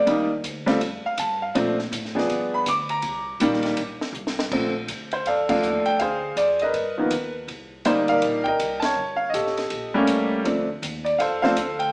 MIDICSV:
0, 0, Header, 1, 5, 480
1, 0, Start_track
1, 0, Key_signature, -2, "major"
1, 0, Tempo, 370828
1, 88, Time_signature, 4, 2, 24, 8
1, 15431, End_track
2, 0, Start_track
2, 0, Title_t, "Grand piano"
2, 0, Program_c, 0, 0
2, 0, Note_on_c, 0, 74, 76
2, 85, Note_on_c, 0, 55, 69
2, 94, Note_on_c, 0, 58, 65
2, 96, Note_on_c, 0, 62, 64
2, 106, Note_on_c, 0, 63, 78
2, 359, Note_off_c, 0, 55, 0
2, 364, Note_off_c, 0, 58, 0
2, 364, Note_off_c, 0, 62, 0
2, 370, Note_off_c, 0, 63, 0
2, 372, Note_off_c, 0, 74, 0
2, 858, Note_on_c, 0, 55, 77
2, 861, Note_on_c, 0, 57, 73
2, 867, Note_on_c, 0, 60, 70
2, 874, Note_on_c, 0, 65, 83
2, 1023, Note_off_c, 0, 55, 0
2, 1025, Note_off_c, 0, 57, 0
2, 1028, Note_off_c, 0, 60, 0
2, 1032, Note_off_c, 0, 65, 0
2, 1371, Note_on_c, 0, 77, 94
2, 1533, Note_off_c, 0, 77, 0
2, 1546, Note_on_c, 0, 81, 96
2, 1831, Note_off_c, 0, 81, 0
2, 1840, Note_on_c, 0, 77, 77
2, 2005, Note_on_c, 0, 53, 76
2, 2012, Note_on_c, 0, 57, 70
2, 2012, Note_on_c, 0, 60, 70
2, 2019, Note_on_c, 0, 62, 79
2, 2278, Note_off_c, 0, 53, 0
2, 2281, Note_off_c, 0, 77, 0
2, 2282, Note_off_c, 0, 57, 0
2, 2282, Note_off_c, 0, 60, 0
2, 2285, Note_off_c, 0, 62, 0
2, 2781, Note_on_c, 0, 53, 70
2, 2785, Note_on_c, 0, 59, 65
2, 2787, Note_on_c, 0, 68, 62
2, 2797, Note_on_c, 0, 62, 78
2, 3289, Note_on_c, 0, 83, 103
2, 3407, Note_off_c, 0, 53, 0
2, 3408, Note_off_c, 0, 59, 0
2, 3409, Note_off_c, 0, 68, 0
2, 3414, Note_off_c, 0, 62, 0
2, 3451, Note_off_c, 0, 83, 0
2, 3475, Note_on_c, 0, 86, 110
2, 3754, Note_off_c, 0, 86, 0
2, 3755, Note_on_c, 0, 82, 101
2, 4198, Note_off_c, 0, 82, 0
2, 4408, Note_on_c, 0, 51, 77
2, 4415, Note_on_c, 0, 55, 72
2, 4416, Note_on_c, 0, 58, 71
2, 4424, Note_on_c, 0, 62, 87
2, 4886, Note_off_c, 0, 51, 0
2, 4890, Note_off_c, 0, 55, 0
2, 4891, Note_off_c, 0, 58, 0
2, 4894, Note_off_c, 0, 62, 0
2, 5845, Note_on_c, 0, 50, 61
2, 5854, Note_on_c, 0, 53, 56
2, 5857, Note_on_c, 0, 57, 59
2, 5862, Note_on_c, 0, 60, 67
2, 6117, Note_off_c, 0, 50, 0
2, 6122, Note_off_c, 0, 53, 0
2, 6123, Note_off_c, 0, 57, 0
2, 6126, Note_off_c, 0, 60, 0
2, 6637, Note_on_c, 0, 72, 77
2, 6797, Note_off_c, 0, 72, 0
2, 6819, Note_on_c, 0, 77, 88
2, 6830, Note_on_c, 0, 74, 62
2, 6834, Note_on_c, 0, 69, 62
2, 7094, Note_off_c, 0, 77, 0
2, 7102, Note_on_c, 0, 50, 73
2, 7107, Note_on_c, 0, 53, 68
2, 7108, Note_on_c, 0, 57, 66
2, 7109, Note_off_c, 0, 69, 0
2, 7110, Note_off_c, 0, 74, 0
2, 7111, Note_on_c, 0, 62, 80
2, 7114, Note_on_c, 0, 77, 89
2, 7129, Note_on_c, 0, 69, 63
2, 7129, Note_on_c, 0, 74, 65
2, 7579, Note_on_c, 0, 79, 93
2, 7605, Note_off_c, 0, 77, 0
2, 7726, Note_off_c, 0, 50, 0
2, 7729, Note_off_c, 0, 53, 0
2, 7729, Note_off_c, 0, 57, 0
2, 7730, Note_off_c, 0, 69, 0
2, 7730, Note_off_c, 0, 74, 0
2, 7731, Note_off_c, 0, 62, 0
2, 7757, Note_on_c, 0, 77, 89
2, 7766, Note_off_c, 0, 79, 0
2, 7779, Note_on_c, 0, 68, 66
2, 7783, Note_on_c, 0, 72, 67
2, 8246, Note_on_c, 0, 74, 85
2, 8255, Note_off_c, 0, 77, 0
2, 8557, Note_off_c, 0, 74, 0
2, 8566, Note_on_c, 0, 75, 80
2, 8582, Note_on_c, 0, 70, 60
2, 8583, Note_on_c, 0, 71, 57
2, 8680, Note_off_c, 0, 68, 0
2, 8682, Note_off_c, 0, 72, 0
2, 9029, Note_on_c, 0, 51, 65
2, 9032, Note_on_c, 0, 58, 60
2, 9033, Note_on_c, 0, 53, 58
2, 9044, Note_on_c, 0, 59, 69
2, 9169, Note_off_c, 0, 75, 0
2, 9188, Note_off_c, 0, 51, 0
2, 9189, Note_off_c, 0, 53, 0
2, 9189, Note_off_c, 0, 58, 0
2, 9195, Note_off_c, 0, 59, 0
2, 9473, Note_off_c, 0, 70, 0
2, 9474, Note_off_c, 0, 71, 0
2, 10165, Note_on_c, 0, 63, 70
2, 10166, Note_on_c, 0, 55, 62
2, 10168, Note_on_c, 0, 72, 79
2, 10177, Note_on_c, 0, 58, 67
2, 10181, Note_on_c, 0, 62, 79
2, 10236, Note_off_c, 0, 72, 0
2, 10471, Note_on_c, 0, 77, 105
2, 10500, Note_on_c, 0, 70, 67
2, 10501, Note_on_c, 0, 74, 65
2, 10888, Note_off_c, 0, 55, 0
2, 10888, Note_off_c, 0, 63, 0
2, 10894, Note_off_c, 0, 58, 0
2, 10896, Note_off_c, 0, 62, 0
2, 10916, Note_off_c, 0, 77, 0
2, 10922, Note_on_c, 0, 79, 90
2, 10957, Note_off_c, 0, 70, 0
2, 10970, Note_on_c, 0, 75, 69
2, 10977, Note_on_c, 0, 70, 69
2, 11388, Note_on_c, 0, 81, 98
2, 11394, Note_off_c, 0, 74, 0
2, 11431, Note_off_c, 0, 79, 0
2, 11448, Note_on_c, 0, 73, 74
2, 11572, Note_off_c, 0, 75, 0
2, 11575, Note_off_c, 0, 70, 0
2, 11854, Note_off_c, 0, 81, 0
2, 11862, Note_on_c, 0, 77, 88
2, 12032, Note_on_c, 0, 75, 79
2, 12049, Note_off_c, 0, 77, 0
2, 12091, Note_on_c, 0, 67, 56
2, 12093, Note_on_c, 0, 69, 60
2, 12348, Note_off_c, 0, 73, 0
2, 12869, Note_on_c, 0, 57, 77
2, 12870, Note_on_c, 0, 55, 85
2, 12879, Note_on_c, 0, 58, 78
2, 12886, Note_on_c, 0, 61, 98
2, 13272, Note_off_c, 0, 75, 0
2, 13302, Note_off_c, 0, 67, 0
2, 13303, Note_off_c, 0, 69, 0
2, 13492, Note_off_c, 0, 57, 0
2, 13493, Note_off_c, 0, 55, 0
2, 13497, Note_off_c, 0, 58, 0
2, 13501, Note_off_c, 0, 61, 0
2, 13517, Note_on_c, 0, 53, 54
2, 13527, Note_on_c, 0, 57, 50
2, 13532, Note_on_c, 0, 60, 52
2, 13536, Note_on_c, 0, 62, 64
2, 13796, Note_off_c, 0, 53, 0
2, 13801, Note_off_c, 0, 57, 0
2, 13803, Note_off_c, 0, 60, 0
2, 13805, Note_off_c, 0, 62, 0
2, 14296, Note_on_c, 0, 74, 74
2, 14477, Note_on_c, 0, 77, 86
2, 14487, Note_off_c, 0, 74, 0
2, 14499, Note_on_c, 0, 69, 63
2, 14507, Note_on_c, 0, 72, 60
2, 14765, Note_off_c, 0, 77, 0
2, 14782, Note_off_c, 0, 72, 0
2, 14785, Note_off_c, 0, 69, 0
2, 14785, Note_on_c, 0, 77, 103
2, 14798, Note_on_c, 0, 53, 68
2, 14801, Note_on_c, 0, 72, 68
2, 14805, Note_on_c, 0, 69, 64
2, 14807, Note_on_c, 0, 57, 68
2, 14813, Note_on_c, 0, 60, 69
2, 14823, Note_on_c, 0, 62, 76
2, 14955, Note_off_c, 0, 53, 0
2, 14960, Note_off_c, 0, 57, 0
2, 14963, Note_off_c, 0, 60, 0
2, 14968, Note_off_c, 0, 62, 0
2, 15262, Note_on_c, 0, 79, 85
2, 15284, Note_off_c, 0, 77, 0
2, 15410, Note_off_c, 0, 72, 0
2, 15411, Note_off_c, 0, 69, 0
2, 15431, Note_off_c, 0, 79, 0
2, 15431, End_track
3, 0, Start_track
3, 0, Title_t, "Upright bass"
3, 0, Program_c, 1, 32
3, 80, Note_on_c, 1, 39, 92
3, 549, Note_off_c, 1, 39, 0
3, 566, Note_on_c, 1, 38, 93
3, 1032, Note_off_c, 1, 38, 0
3, 1044, Note_on_c, 1, 41, 85
3, 1327, Note_off_c, 1, 41, 0
3, 1527, Note_on_c, 1, 43, 93
3, 1992, Note_off_c, 1, 43, 0
3, 2011, Note_on_c, 1, 46, 91
3, 2475, Note_off_c, 1, 46, 0
3, 2481, Note_on_c, 1, 45, 98
3, 2949, Note_off_c, 1, 45, 0
3, 2969, Note_on_c, 1, 43, 87
3, 3433, Note_off_c, 1, 43, 0
3, 3449, Note_on_c, 1, 38, 96
3, 3913, Note_off_c, 1, 38, 0
3, 3922, Note_on_c, 1, 36, 87
3, 4389, Note_off_c, 1, 36, 0
3, 4402, Note_on_c, 1, 34, 96
3, 4869, Note_off_c, 1, 34, 0
3, 4879, Note_on_c, 1, 33, 82
3, 5159, Note_off_c, 1, 33, 0
3, 5340, Note_on_c, 1, 36, 94
3, 5817, Note_off_c, 1, 36, 0
3, 5841, Note_on_c, 1, 34, 83
3, 6308, Note_off_c, 1, 34, 0
3, 6320, Note_on_c, 1, 38, 83
3, 6788, Note_off_c, 1, 38, 0
3, 6802, Note_on_c, 1, 41, 78
3, 7266, Note_off_c, 1, 41, 0
3, 7274, Note_on_c, 1, 39, 85
3, 7560, Note_off_c, 1, 39, 0
3, 7763, Note_on_c, 1, 38, 87
3, 8229, Note_off_c, 1, 38, 0
3, 8237, Note_on_c, 1, 41, 87
3, 8706, Note_off_c, 1, 41, 0
3, 8717, Note_on_c, 1, 43, 76
3, 9186, Note_off_c, 1, 43, 0
3, 9201, Note_on_c, 1, 39, 90
3, 9669, Note_off_c, 1, 39, 0
3, 9677, Note_on_c, 1, 36, 86
3, 10147, Note_off_c, 1, 36, 0
3, 10164, Note_on_c, 1, 38, 86
3, 10631, Note_off_c, 1, 38, 0
3, 10639, Note_on_c, 1, 34, 81
3, 11108, Note_off_c, 1, 34, 0
3, 11123, Note_on_c, 1, 36, 86
3, 11591, Note_off_c, 1, 36, 0
3, 11601, Note_on_c, 1, 31, 85
3, 12070, Note_off_c, 1, 31, 0
3, 12085, Note_on_c, 1, 33, 86
3, 12552, Note_off_c, 1, 33, 0
3, 12562, Note_on_c, 1, 34, 77
3, 13031, Note_off_c, 1, 34, 0
3, 13045, Note_on_c, 1, 36, 84
3, 13513, Note_off_c, 1, 36, 0
3, 13523, Note_on_c, 1, 38, 81
3, 13992, Note_off_c, 1, 38, 0
3, 14006, Note_on_c, 1, 39, 88
3, 14474, Note_off_c, 1, 39, 0
3, 14488, Note_on_c, 1, 41, 82
3, 14956, Note_off_c, 1, 41, 0
3, 14972, Note_on_c, 1, 38, 91
3, 15431, Note_off_c, 1, 38, 0
3, 15431, End_track
4, 0, Start_track
4, 0, Title_t, "Muted upright bass strokes"
4, 1345, Note_on_c, 9, 29, 42
4, 1474, Note_off_c, 9, 29, 0
4, 5167, Note_on_c, 9, 29, 45
4, 5296, Note_off_c, 9, 29, 0
4, 7584, Note_on_c, 9, 29, 38
4, 7713, Note_off_c, 9, 29, 0
4, 15431, End_track
5, 0, Start_track
5, 0, Title_t, "Drums"
5, 88, Note_on_c, 9, 36, 22
5, 90, Note_on_c, 9, 51, 62
5, 218, Note_off_c, 9, 36, 0
5, 220, Note_off_c, 9, 51, 0
5, 569, Note_on_c, 9, 36, 28
5, 569, Note_on_c, 9, 44, 63
5, 569, Note_on_c, 9, 51, 67
5, 698, Note_off_c, 9, 36, 0
5, 698, Note_off_c, 9, 44, 0
5, 698, Note_off_c, 9, 51, 0
5, 874, Note_on_c, 9, 51, 49
5, 878, Note_on_c, 9, 38, 40
5, 1004, Note_off_c, 9, 51, 0
5, 1008, Note_off_c, 9, 38, 0
5, 1047, Note_on_c, 9, 36, 26
5, 1049, Note_on_c, 9, 51, 67
5, 1177, Note_off_c, 9, 36, 0
5, 1178, Note_off_c, 9, 51, 0
5, 1522, Note_on_c, 9, 44, 61
5, 1522, Note_on_c, 9, 51, 77
5, 1528, Note_on_c, 9, 36, 27
5, 1651, Note_off_c, 9, 44, 0
5, 1651, Note_off_c, 9, 51, 0
5, 1658, Note_off_c, 9, 36, 0
5, 2009, Note_on_c, 9, 36, 27
5, 2010, Note_on_c, 9, 51, 64
5, 2139, Note_off_c, 9, 36, 0
5, 2140, Note_off_c, 9, 51, 0
5, 2317, Note_on_c, 9, 38, 33
5, 2446, Note_off_c, 9, 38, 0
5, 2489, Note_on_c, 9, 36, 20
5, 2493, Note_on_c, 9, 44, 66
5, 2493, Note_on_c, 9, 51, 77
5, 2618, Note_off_c, 9, 36, 0
5, 2623, Note_off_c, 9, 44, 0
5, 2623, Note_off_c, 9, 51, 0
5, 2656, Note_on_c, 9, 38, 28
5, 2786, Note_off_c, 9, 38, 0
5, 2824, Note_on_c, 9, 38, 50
5, 2953, Note_off_c, 9, 38, 0
5, 2971, Note_on_c, 9, 36, 26
5, 2972, Note_on_c, 9, 51, 65
5, 3100, Note_off_c, 9, 36, 0
5, 3101, Note_off_c, 9, 51, 0
5, 3444, Note_on_c, 9, 44, 67
5, 3444, Note_on_c, 9, 51, 71
5, 3447, Note_on_c, 9, 36, 29
5, 3574, Note_off_c, 9, 44, 0
5, 3574, Note_off_c, 9, 51, 0
5, 3576, Note_off_c, 9, 36, 0
5, 3742, Note_on_c, 9, 51, 47
5, 3871, Note_off_c, 9, 51, 0
5, 3912, Note_on_c, 9, 51, 66
5, 3923, Note_on_c, 9, 36, 25
5, 4042, Note_off_c, 9, 51, 0
5, 4052, Note_off_c, 9, 36, 0
5, 4403, Note_on_c, 9, 36, 21
5, 4403, Note_on_c, 9, 44, 52
5, 4403, Note_on_c, 9, 51, 74
5, 4533, Note_off_c, 9, 36, 0
5, 4533, Note_off_c, 9, 44, 0
5, 4533, Note_off_c, 9, 51, 0
5, 4575, Note_on_c, 9, 38, 28
5, 4694, Note_on_c, 9, 51, 50
5, 4705, Note_off_c, 9, 38, 0
5, 4725, Note_on_c, 9, 38, 49
5, 4824, Note_off_c, 9, 51, 0
5, 4854, Note_off_c, 9, 38, 0
5, 4877, Note_on_c, 9, 51, 67
5, 4883, Note_on_c, 9, 36, 26
5, 5006, Note_off_c, 9, 51, 0
5, 5012, Note_off_c, 9, 36, 0
5, 5195, Note_on_c, 9, 38, 61
5, 5325, Note_off_c, 9, 38, 0
5, 5362, Note_on_c, 9, 44, 63
5, 5492, Note_off_c, 9, 44, 0
5, 5526, Note_on_c, 9, 38, 66
5, 5656, Note_off_c, 9, 38, 0
5, 5683, Note_on_c, 9, 38, 84
5, 5812, Note_off_c, 9, 38, 0
5, 5847, Note_on_c, 9, 36, 65
5, 5848, Note_on_c, 9, 49, 69
5, 5976, Note_off_c, 9, 36, 0
5, 5977, Note_off_c, 9, 49, 0
5, 6321, Note_on_c, 9, 44, 58
5, 6321, Note_on_c, 9, 51, 66
5, 6325, Note_on_c, 9, 36, 24
5, 6450, Note_off_c, 9, 44, 0
5, 6450, Note_off_c, 9, 51, 0
5, 6455, Note_off_c, 9, 36, 0
5, 6620, Note_on_c, 9, 51, 44
5, 6749, Note_off_c, 9, 51, 0
5, 6803, Note_on_c, 9, 51, 59
5, 6806, Note_on_c, 9, 36, 18
5, 6933, Note_off_c, 9, 51, 0
5, 6935, Note_off_c, 9, 36, 0
5, 7109, Note_on_c, 9, 36, 80
5, 7111, Note_on_c, 9, 49, 71
5, 7239, Note_off_c, 9, 36, 0
5, 7240, Note_off_c, 9, 49, 0
5, 7286, Note_on_c, 9, 44, 51
5, 7416, Note_off_c, 9, 44, 0
5, 7579, Note_on_c, 9, 51, 44
5, 7708, Note_off_c, 9, 51, 0
5, 7760, Note_on_c, 9, 51, 57
5, 7763, Note_on_c, 9, 36, 23
5, 7890, Note_off_c, 9, 51, 0
5, 7892, Note_off_c, 9, 36, 0
5, 8242, Note_on_c, 9, 36, 22
5, 8242, Note_on_c, 9, 44, 60
5, 8242, Note_on_c, 9, 51, 65
5, 8372, Note_off_c, 9, 36, 0
5, 8372, Note_off_c, 9, 44, 0
5, 8372, Note_off_c, 9, 51, 0
5, 8535, Note_on_c, 9, 51, 44
5, 8664, Note_off_c, 9, 51, 0
5, 8720, Note_on_c, 9, 51, 57
5, 8721, Note_on_c, 9, 36, 18
5, 8850, Note_off_c, 9, 51, 0
5, 8851, Note_off_c, 9, 36, 0
5, 9197, Note_on_c, 9, 44, 54
5, 9197, Note_on_c, 9, 51, 69
5, 9201, Note_on_c, 9, 36, 25
5, 9327, Note_off_c, 9, 44, 0
5, 9327, Note_off_c, 9, 51, 0
5, 9330, Note_off_c, 9, 36, 0
5, 9685, Note_on_c, 9, 36, 19
5, 9687, Note_on_c, 9, 51, 54
5, 9815, Note_off_c, 9, 36, 0
5, 9816, Note_off_c, 9, 51, 0
5, 10161, Note_on_c, 9, 44, 54
5, 10161, Note_on_c, 9, 51, 70
5, 10163, Note_on_c, 9, 36, 24
5, 10291, Note_off_c, 9, 44, 0
5, 10291, Note_off_c, 9, 51, 0
5, 10293, Note_off_c, 9, 36, 0
5, 10458, Note_on_c, 9, 51, 45
5, 10588, Note_off_c, 9, 51, 0
5, 10638, Note_on_c, 9, 51, 64
5, 10645, Note_on_c, 9, 36, 24
5, 10768, Note_off_c, 9, 51, 0
5, 10774, Note_off_c, 9, 36, 0
5, 10948, Note_on_c, 9, 36, 57
5, 11077, Note_off_c, 9, 36, 0
5, 11127, Note_on_c, 9, 36, 25
5, 11127, Note_on_c, 9, 44, 60
5, 11127, Note_on_c, 9, 51, 72
5, 11256, Note_off_c, 9, 44, 0
5, 11256, Note_off_c, 9, 51, 0
5, 11257, Note_off_c, 9, 36, 0
5, 11420, Note_on_c, 9, 51, 62
5, 11424, Note_on_c, 9, 38, 78
5, 11549, Note_off_c, 9, 51, 0
5, 11553, Note_off_c, 9, 38, 0
5, 12088, Note_on_c, 9, 44, 64
5, 12088, Note_on_c, 9, 51, 60
5, 12089, Note_on_c, 9, 36, 21
5, 12217, Note_off_c, 9, 44, 0
5, 12217, Note_off_c, 9, 51, 0
5, 12218, Note_off_c, 9, 36, 0
5, 12256, Note_on_c, 9, 38, 27
5, 12386, Note_off_c, 9, 38, 0
5, 12392, Note_on_c, 9, 51, 47
5, 12404, Note_on_c, 9, 38, 44
5, 12522, Note_off_c, 9, 51, 0
5, 12534, Note_off_c, 9, 38, 0
5, 12558, Note_on_c, 9, 51, 60
5, 12565, Note_on_c, 9, 36, 21
5, 12688, Note_off_c, 9, 51, 0
5, 12695, Note_off_c, 9, 36, 0
5, 13038, Note_on_c, 9, 44, 61
5, 13038, Note_on_c, 9, 51, 74
5, 13045, Note_on_c, 9, 36, 20
5, 13168, Note_off_c, 9, 44, 0
5, 13168, Note_off_c, 9, 51, 0
5, 13175, Note_off_c, 9, 36, 0
5, 13529, Note_on_c, 9, 36, 20
5, 13531, Note_on_c, 9, 51, 59
5, 13658, Note_off_c, 9, 36, 0
5, 13660, Note_off_c, 9, 51, 0
5, 14013, Note_on_c, 9, 36, 25
5, 14015, Note_on_c, 9, 44, 55
5, 14015, Note_on_c, 9, 51, 70
5, 14142, Note_off_c, 9, 36, 0
5, 14145, Note_off_c, 9, 44, 0
5, 14145, Note_off_c, 9, 51, 0
5, 14317, Note_on_c, 9, 51, 44
5, 14446, Note_off_c, 9, 51, 0
5, 14492, Note_on_c, 9, 36, 22
5, 14496, Note_on_c, 9, 51, 61
5, 14622, Note_off_c, 9, 36, 0
5, 14625, Note_off_c, 9, 51, 0
5, 14804, Note_on_c, 9, 38, 39
5, 14934, Note_off_c, 9, 38, 0
5, 14970, Note_on_c, 9, 44, 62
5, 14970, Note_on_c, 9, 51, 68
5, 14975, Note_on_c, 9, 36, 17
5, 15100, Note_off_c, 9, 44, 0
5, 15100, Note_off_c, 9, 51, 0
5, 15104, Note_off_c, 9, 36, 0
5, 15270, Note_on_c, 9, 51, 44
5, 15399, Note_off_c, 9, 51, 0
5, 15431, End_track
0, 0, End_of_file